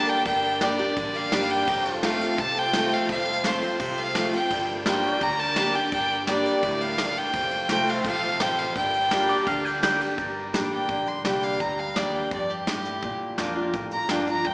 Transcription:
Already playing: steel-string acoustic guitar D3 G3 A#3 D4 G4, violin section G3 A#3 D4 A#4 D5, pedal steel guitar G4 A#4 D5, fiddle A5
0.08 fiddle G5, ride
0.25 fingered electric bass G1, steel-string acoustic guitar G2, fiddle G5, kick, ride
0.44 ride
0.61 steel-string acoustic guitar G3 A#3 D4 G4, fiddle D5, snare, ride
0.79 steel-string acoustic guitar D4 G4, ride
0.96 fingered electric bass A1, steel-string acoustic guitar D3, kick, ride
1.14 fiddle F5, ride
1.32 fingered electric bass G1, steel-string acoustic guitar G3 A#3 D4 G4, snare, ride
1.50 fiddle G5, ride
1.67 fingered electric bass F1, violin section A3 C4 F4 A4 C5, pedal steel guitar G4 A#4 D5, kick, ride
1.85 pedal steel guitar A4, ride
1.94 pedal steel guitar F4 C5
2.03 steel-string acoustic guitar F3 A3 C4 F4, fiddle F5, snare, ride
2.21 ride
2.38 fingered electric bass C2, steel-string acoustic guitar C3, fiddle A5, kick, ride
2.56 fiddle G5, ride
2.73 steel-string acoustic guitar F3 A3 C4 F4, snare, ride
2.91 fiddle F5, ride
3.09 fingered electric bass F1, steel-string acoustic guitar F2, fiddle F5, kick, ride
3.27 ride
3.44 steel-string acoustic guitar F3 A3 C4 F4, fiddle C5, snare, ride
3.62 steel-string acoustic guitar C4 F4, ride
3.79 fingered electric bass C2, steel-string acoustic guitar C3, kick, ride
3.97 fiddle F5, ride
4.15 steel-string acoustic guitar F3 A3 C4 F4, snare, ride
4.33 steel-string acoustic guitar C4 F4, fiddle G5, ride
4.50 fingered electric bass G1, steel-string acoustic guitar G2, violin section G3 D4 A#4 D5, kick, ride
4.68 ride
4.86 steel-string acoustic guitar G3 A#3 D4 G4, pedal steel guitar F4 A#4 C5, fiddle G5, snare, ride
5.03 steel-string acoustic guitar D4 G4, ride
5.12 pedal steel guitar G4 D5
5.21 fingered electric bass D2, steel-string acoustic guitar D3, fiddle A#5, kick, ride
5.39 fiddle A5, ride
5.56 steel-string acoustic guitar G3 A#3 D4 G4, snare, ride
5.74 steel-string acoustic guitar D4 G4, fiddle G5, ride
5.92 fingered electric bass G1, steel-string acoustic guitar G2, fiddle G5, kick, ride
6.10 ride
6.27 steel-string acoustic guitar G3 A#3 D4 G4, fiddle D5, snare, ride
6.45 ride
6.63 fingered electric bass D2, steel-string acoustic guitar A2, kick, ride
6.81 fiddle F5, ride
6.98 steel-string acoustic guitar G2, snare, ride
7.16 fiddle G5, ride
7.33 fingered electric bass F1, steel-string acoustic guitar F2, violin section A3 C4 F4 A4 C5, kick, ride
7.51 ride
7.69 fingered electric bass C2, steel-string acoustic guitar F3 A3 C4 F4, pedal steel guitar G4 A#4 C5, fiddle G5, snare, ride
7.87 pedal steel guitar A4, fiddle F5, ride
7.95 pedal steel guitar F4
8.05 fingered electric bass A#1, steel-string acoustic guitar C3, fiddle F5, kick, ride
8.22 ride
8.40 fingered electric bass A1, steel-string acoustic guitar F2, fiddle G5, snare, ride
8.58 fiddle F5, ride
8.76 fingered electric bass G1, steel-string acoustic guitar G2, violin section G3 A#3 D4 A#4 D5, fiddle G5, kick, ride
8.94 ride
9.11 steel-string acoustic guitar G3 A#3 D4 G4, pedal steel guitar F4 A#4 D5, snare, ride
9.29 clean electric guitar D5, ride
9.36 pedal steel guitar G4
9.47 fingered electric bass D2, steel-string acoustic guitar D3, clean electric guitar F5, kick, ride
9.65 clean electric guitar G5, ride
9.83 steel-string acoustic guitar G3 A#3 D4 G4, clean electric guitar G5, snare, ride
10.01 steel-string acoustic guitar D4 G4, ride
10.17 fingered electric bass G1, steel-string acoustic guitar G2, pedal steel guitar G4 A#4 D5, kick, closed hi-hat
10.53 fingered electric bass A1, steel-string acoustic guitar G3 A#3 D4 G4, snare, closed hi-hat
10.72 fiddle G5
10.89 fingered electric bass A#1, steel-string acoustic guitar D3, kick, closed hi-hat
11.06 fiddle C6, closed hi-hat
11.24 fingered electric bass C2, steel-string acoustic guitar G3 A#3 D4 G4, fiddle G5, snare, closed hi-hat
11.43 fiddle F5, closed hi-hat
11.60 fingered electric bass D2, steel-string acoustic guitar G2, fiddle A#5, kick, closed hi-hat
11.79 fiddle F5
11.96 fingered electric bass D#2, steel-string acoustic guitar G3 A#3 D4 G4, fiddle D5, snare, closed hi-hat
12.14 fiddle G5
12.31 fingered electric bass F2, steel-string acoustic guitar G2, fiddle D5, kick, closed hi-hat
12.50 fiddle G4, closed hi-hat
12.67 fingered electric bass G2, steel-string acoustic guitar A2, snare, closed hi-hat
12.85 closed hi-hat
13.02 fingered electric bass A#2, steel-string acoustic guitar A#2, kick, closed hi-hat
13.21 muted fingered electric bass stroke
13.38 fingered electric bass F2, steel-string acoustic guitar F3 A#3 D4 F4, pedal steel guitar G4 A#4 D5, snare, closed hi-hat
13.56 steel-string acoustic guitar D4 F4
13.63 pedal steel guitar F4
13.74 steel-string acoustic guitar F2, fingered electric bass A2, kick, closed hi-hat
13.91 fiddle A#5, closed hi-hat
14.09 fingered electric bass G2, steel-string acoustic guitar F3 A#3 D4 F4, fiddle G5, snare, closed hi-hat
14.27 steel-string acoustic guitar D4 F4, fiddle A#5, closed hi-hat
14.44 fingered electric bass F2, steel-string acoustic guitar A#2, fiddle G5, kick, closed hi-hat

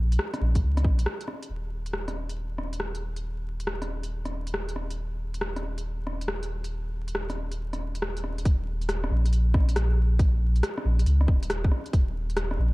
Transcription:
Already playing: sub bass A#1
0.12 closed hi-hat
0.19 cross-stick
0.34 cross-stick, closed hi-hat
0.41 sub bass A#1
0.55 kick, closed hi-hat
0.63 sub bass C#2
0.77 cross-stick, closed hi-hat
0.84 sub bass A#1, kick
0.99 closed hi-hat
1.06 cross-stick
1.21 closed hi-hat
1.28 cross-stick
1.43 closed hi-hat
1.49 sub bass D#1
1.86 closed hi-hat
1.93 cross-stick
2.08 cross-stick, closed hi-hat
2.29 closed hi-hat
2.58 cross-stick
2.73 closed hi-hat
2.80 cross-stick
2.95 closed hi-hat
3.16 closed hi-hat
3.60 closed hi-hat
3.67 cross-stick
3.82 cross-stick, closed hi-hat
4.03 closed hi-hat
4.25 cross-stick, closed hi-hat
4.47 closed hi-hat
4.54 cross-stick
4.69 closed hi-hat
4.76 cross-stick
4.91 closed hi-hat
5.34 closed hi-hat
5.41 cross-stick
5.56 cross-stick, closed hi-hat
5.78 closed hi-hat
6.07 cross-stick
6.21 closed hi-hat
6.28 cross-stick
6.43 closed hi-hat
6.64 closed hi-hat
7.08 closed hi-hat
7.15 cross-stick
7.30 cross-stick, closed hi-hat
7.51 closed hi-hat
7.73 cross-stick, closed hi-hat
7.95 closed hi-hat
8.02 cross-stick
8.17 closed hi-hat
8.24 cross-stick
8.38 closed hi-hat
8.45 sub bass D#1, kick, closed hi-hat
8.82 closed hi-hat
8.89 cross-stick, closed hi-hat
9.04 cross-stick
9.11 sub bass A#1
9.25 closed hi-hat
9.33 closed hi-hat
9.54 kick, cross-stick
9.69 closed hi-hat
9.76 cross-stick, closed hi-hat
10.19 kick, closed hi-hat
10.56 closed hi-hat
10.63 cross-stick, closed hi-hat
10.78 cross-stick
10.85 sub bass A#1
10.99 closed hi-hat
11.06 sub bass C#2, closed hi-hat
11.21 cross-stick
11.28 sub bass D#1, kick
11.43 closed hi-hat
11.50 cross-stick, closed hi-hat
11.64 kick
11.72 cross-stick
11.86 closed hi-hat
11.93 sub bass D#1, kick, closed hi-hat
12.30 closed hi-hat
12.37 cross-stick, closed hi-hat
12.51 cross-stick
12.59 sub bass A#1

